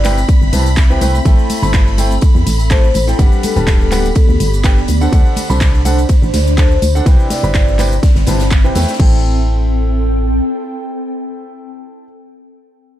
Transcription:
Already playing: G1 C4 E5 B5
0.04 C3 E4 B4 C5 G5, clap, closed hi-hat, open hi-hat, tambourine, high conga, shaker
0.17 tambourine, shaker
0.29 kick, closed hi-hat, ride, tambourine, shaker
0.42 G1, shaker
0.53 C2 C3 E4 B4 C5 A5, closed hi-hat, open hi-hat, tambourine, high conga, shaker
0.66 closed hi-hat, tambourine, shaker
0.77 kick, snare, clap, closed hi-hat, ride, tambourine, shaker
0.90 C3 E4 B4 C5 G5, shaker
1.01 C2 A3 E4 B4 C5 G5, closed hi-hat, open hi-hat, tambourine, high conga, shaker
1.15 tambourine, shaker
1.25 A1 A3 E4 A4 C5 G5, kick, closed hi-hat, ride, tambourine, shaker
1.39 shaker
1.45 A4
1.50 open hi-hat, tambourine, high conga, shaker
1.62 G1 A3 E4 A4 C5 B5, tambourine, shaker
1.73 kick, snare, clap, closed hi-hat, ride, shaker
1.87 snare, shaker
1.98 A3 E4 A4 C5 G5, closed hi-hat, open hi-hat, tambourine, high conga, shaker
2.10 G5, closed hi-hat, tambourine, shaker
2.21 kick, closed hi-hat, ride, tambourine, shaker
2.35 E2, shaker
2.46 A1, snare, closed hi-hat, open hi-hat, tambourine, high conga, shaker
2.59 tambourine, shaker
2.70 A3 E4 A4 C5 A5, kick, snare, clap, closed hi-hat, ride, tambourine, shaker
2.84 C5, shaker
2.94 A1, closed hi-hat, open hi-hat, tambourine, high conga, shaker
3.07 E4 A4 C5 G5, snare, tambourine, shaker
3.19 G1 G3 B3 D4 G4 B4 F#5, kick, closed hi-hat, ride, tambourine, shaker
3.32 G4, closed hi-hat, shaker
3.43 A4, snare, closed hi-hat, open hi-hat, tambourine, high conga, shaker
3.56 D1 G3 D4 G4 B4 A5, closed hi-hat, tambourine, shaker
3.67 kick, snare, clap, closed hi-hat, ride, tambourine, shaker
3.80 A4, shaker
3.91 G3 D4 G4 B4 F#5, clap, closed hi-hat, open hi-hat, tambourine, high conga, shaker
3.96 D5
4.05 tambourine, shaker
4.15 kick, closed hi-hat, ride, tambourine, shaker
4.29 D2, shaker
4.40 G1, closed hi-hat, open hi-hat, tambourine, high conga, shaker
4.53 closed hi-hat, tambourine, shaker
4.64 D3 D4 G4 B4 G5, kick, snare, clap, closed hi-hat, ride, tambourine, shaker
4.78 shaker
4.88 D2 D4, closed hi-hat, open hi-hat, tambourine, high conga, shaker
5.01 D3 D4 A4 C5 F#5, tambourine, shaker
5.12 D2 D3 D4 A4 C5 F#5, kick, closed hi-hat, ride, tambourine, shaker
5.26 shaker
5.36 open hi-hat, tambourine, high conga, shaker
5.50 C2 D3 D4 A4 C5 B5, tambourine, shaker
5.60 kick, snare, clap, closed hi-hat, ride, tambourine, shaker
5.74 snare, shaker
5.85 D3 D4 A4 C5 F#5, closed hi-hat, open hi-hat, tambourine, high conga, shaker
5.98 closed hi-hat, tambourine, shaker
6.09 kick, closed hi-hat, ride, tambourine, shaker
6.22 A1, shaker
6.34 D2, snare, closed hi-hat, open hi-hat, tambourine, high conga, shaker
6.46 tambourine, shaker
6.58 D3 D4 A4 C5 A5, kick, snare, clap, closed hi-hat, ride, tambourine, shaker
6.71 C5, shaker
6.82 D2, closed hi-hat, open hi-hat, tambourine, high conga, shaker
6.95 D4 A4 C5 F#5, tambourine, shaker
7.06 C2 C3 C4 E4 B4 C5, kick, snare, closed hi-hat, ride, tambourine, shaker
7.20 shaker
7.30 D5 B5, snare, closed hi-hat, open hi-hat, tambourine, high conga, shaker
7.43 G1 C3 E4 B4 C5 B5, tambourine, shaker
7.54 kick, snare, clap, closed hi-hat, ride, tambourine, shaker
7.68 shaker
7.79 C3 E4 B4 C5 G5, clap, closed hi-hat, open hi-hat, tambourine, high conga, shaker
7.92 E5, tambourine, shaker
8.03 kick, snare, closed hi-hat, ride, tambourine, shaker
8.15 G1, snare, closed hi-hat, shaker
8.27 G1 C3 E4 B4 C5 A5, snare, closed hi-hat, open hi-hat, tambourine, high conga, shaker
8.40 snare, closed hi-hat, tambourine, shaker
8.51 kick, clap, closed hi-hat, ride, tambourine, shaker
8.64 C3 E4 B4 C5 G5, shaker
8.75 E2 A3 E4 B4 C5 G5, snare, closed hi-hat, open hi-hat, tambourine, high conga, shaker
8.81 snare, closed hi-hat
8.88 snare, closed hi-hat, tambourine, shaker
8.94 snare, closed hi-hat
9.00 A1 C4 E4 A4 C5 G5, kick, crash
9.07 A4
9.14 G5

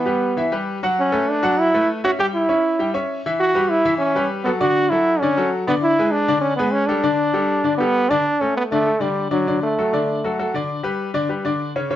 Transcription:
Already playing: B3
0.05 G3 G4 B4
0.37 E3 E4 E5
0.52 G3 G4 B4
0.83 F#3 F#4 F#5
1.00 C#4
1.12 A3 A4 B4
1.30 D4
1.43 F#3 F#4 F#5
1.59 E4
1.74 A3 A4 B4
2.04 C#4 F#4 C#5 E5
2.19 G3 G4 G5
2.35 E4
2.49 C#4 C#5 E5
2.79 G3 G4 G5
2.94 C#4 C#5 E5
3.26 E3 E4 E5
3.40 F#4
3.55 G3 G4 B4
3.69 E4
3.85 E3 E4 E5
3.98 C#4
4.15 G3 G4 B4
4.44 F#3 B3 F#4 A4
4.60 D3 D4 F#4 D5
4.90 F#3 E4 F#4 A4
5.20 D3 C#4 D4 D5
5.37 F#3 F#4 A4
5.67 D3 B3 D4 D5
5.82 E4
5.99 G#3 G#4 B4
6.11 D4
6.28 D3 D4 D5
6.41 C#4
6.56 G#3 B3 G#4 B4
6.72 C#4
6.87 G3 D4 G4 A4
7.04 D3 D4 D5
7.34 G3 G4 A4
7.64 D3 D4 D5
7.78 G3 B3 G4 A4
8.10 D3 D4 D5
8.41 A3 C#4 A4
8.57 B3
8.71 D3 A3 D4 D5
8.86 A3 A4
9.00 D3 G3 D4 D5
9.31 D3 F#3 D4 D5
9.47 D3 D4 D5
9.63 A3
9.78 F#3 F#4 A4
9.93 D3 D4 D5
10.24 F#3 F#4 A4
10.39 F#3 F#4 A4
10.54 D3 D4 D5
10.83 G3 G4 B4
11.14 D3 D4 D5
11.29 G3 G4 B4
11.45 D3 D4 D5
11.76 C#3 C#4 C#5
11.90 C#3 C#4 C#5

